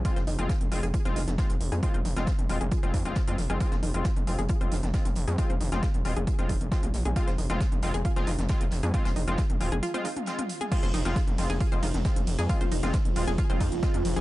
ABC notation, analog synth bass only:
X:1
M:4/4
L:1/16
Q:1/4=135
K:Fm
V:1 name="Analog synth bass" clef=bass
z F,,, F,,, F,,, z F,,, F,,, F,,, z F,,, F,,, F,,, z F,,, F,,, F,, | z F,,, F,,, F,,, z F,,, E,,, F,,, z F,,, F,, F,,, z F,, F,,, _G,,, | z F,,, F,,, F,,, z F,,, F,,, F,,, z F,,, F,,, F,,, z F,,, F,,, F,, | z F,,, F,,, F,,, z F,,, E,,, F,,, z F,,, F,,, F,,, z B,,, B,,, B,,, |
z F,,, F,,, F,,, z F,,, F,,, F,,, z F,,, F,,, F,,, z F,,, F,,, F,, | z F,,, F,,, F,,, z F,,, E,,, F,,, z8 | z F,,, F,,, F,,, z F,,, F,,, F,,, z F,,, F,,, F,,, z F,,, F,,, F,, | z F,,, F,,, F,,, z F,,, E,,, F,,, z F,,, F,, F,,, z F,, F,,, _G,,, |]